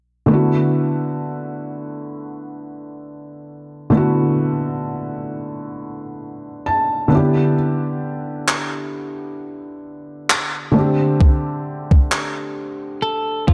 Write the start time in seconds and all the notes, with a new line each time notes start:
0.26 D3 A3 B3
0.32 E4 F#4
3.90 D3 A3 B3
3.95 E4 F#4
6.66 A5
7.08 D3 B3 C#4
7.13 E4 G4
7.18 D4
8.48 clap
10.30 clap
10.72 D3 A3 C4
10.77 D4 G4
11.21 kick
11.91 kick
12.12 clap
13.02 A4
13.48 F4, kick